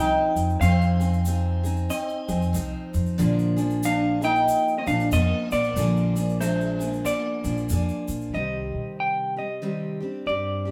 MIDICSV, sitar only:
0, 0, Header, 1, 2, 480
1, 0, Start_track
1, 0, Key_signature, -3, "minor"
1, 0, Tempo, 644468
1, 453, Time_signature, 4, 2, 24, 8
1, 7978, End_track
2, 0, Start_track
2, 0, Title_t, "Sitar"
2, 0, Program_c, 0, 104
2, 0, Note_on_c, 0, 63, 77
2, 425, Note_off_c, 0, 63, 0
2, 461, Note_on_c, 0, 60, 91
2, 1388, Note_off_c, 0, 60, 0
2, 1414, Note_on_c, 0, 60, 69
2, 2157, Note_off_c, 0, 60, 0
2, 2866, Note_on_c, 0, 62, 82
2, 3132, Note_off_c, 0, 62, 0
2, 3154, Note_on_c, 0, 63, 89
2, 3537, Note_off_c, 0, 63, 0
2, 3563, Note_on_c, 0, 60, 62
2, 3622, Note_off_c, 0, 60, 0
2, 3627, Note_on_c, 0, 62, 74
2, 3801, Note_off_c, 0, 62, 0
2, 3819, Note_on_c, 0, 58, 80
2, 4088, Note_off_c, 0, 58, 0
2, 4113, Note_on_c, 0, 58, 76
2, 4746, Note_off_c, 0, 58, 0
2, 4770, Note_on_c, 0, 56, 66
2, 5221, Note_off_c, 0, 56, 0
2, 5248, Note_on_c, 0, 58, 66
2, 5991, Note_off_c, 0, 58, 0
2, 7978, End_track
0, 0, End_of_file